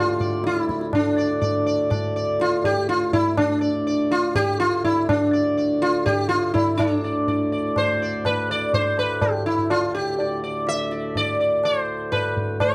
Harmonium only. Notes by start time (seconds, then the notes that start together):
Already playing: D2 A2
0.93 D2 A2
6.79 D2 A2
12.61 D2 A2